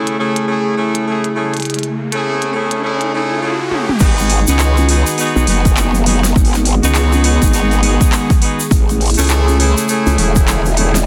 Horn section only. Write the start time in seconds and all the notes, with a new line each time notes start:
Already playing: A3 C#4 E4 G#4
0.18 A3 C#4 E4 G#4
0.48 A3 C#4 E4 G#4
0.78 A3 C#4 E4 G#4
1.07 A3 C#4 E4 G#4
1.36 A3 C#4 E4 G#4
2.13 A3 C#4 E4 G#4
2.53 A3 C#4 E4 G#4
2.83 A3 C#4 E4 G#4
3.12 A3 C#4 E4 G#4
3.42 A3 C#4 E4 G#4
3.71 A3 C#4 E4 G#4
4.01 B3 D#4 F#4 G#4
4.48 B3 D#4 F#4 G#4
4.89 B3 D#4 F#4 G#4
5.18 B3 D#4 F#4 G#4
5.48 B3 D#4 F#4 G#4
5.77 B3 D#4 F#4 G#4
6.06 B3 D#4 F#4 G#4
6.83 B3 D#4 F#4 G#4
7.24 B3 D#4 F#4 G#4
7.53 B3 D#4 F#4 G#4
7.83 B3 D#4 F#4 G#4
8.12 B3 D#4 F#4 G#4
8.42 B3 D#4 F#4 G#4
9.18 A3 C#4 E4 G#4
9.59 A3 C#4 E4 G#4
9.89 A3 C#4 E4 G#4
10.18 A3 C#4 E4 G#4
10.48 A3 C#4 E4 G#4
10.77 A3 C#4 E4 G#4